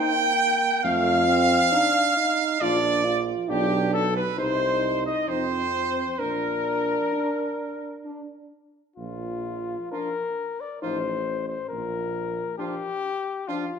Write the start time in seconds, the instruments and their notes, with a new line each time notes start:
Already playing: euphonium A#3, french horn D#4, trumpet G5, cornet G5
0.83 tuba F2, euphonium A3, cornet F5, trumpet F5
1.28 euphonium C4
1.72 euphonium D4, french horn D#4
2.17 euphonium D#4
2.60 tuba A#1, euphonium D4, french horn F4, cornet D5, trumpet D5
3.05 euphonium F4
3.49 tuba B1, euphonium D4, french horn F4, trumpet G4, cornet G4
3.93 cornet A4, trumpet A4
4.16 trumpet B4, cornet B4
4.37 tuba C2, french horn D#4, euphonium D#4, cornet C5, trumpet C5
5.06 trumpet D#5, cornet D#5
5.28 tuba F2, euphonium C4, french horn D#4, trumpet C5, cornet C5
6.19 tuba A#1, euphonium D4, trumpet A#4, cornet A#4
7.12 french horn D4
8.04 french horn D4
8.96 tuba A#1, cornet F4
9.92 euphonium F3, french horn D4, trumpet F4, cornet A#4
10.61 cornet D5
10.82 tuba A1, euphonium F3, french horn D#4, trumpet F4, cornet C5
11.49 cornet C5
11.69 tuba A#1, cornet A#4
12.58 euphonium F3, french horn D4, trumpet F4, cornet G4
13.48 euphonium F3, french horn D4, cornet F4, trumpet F4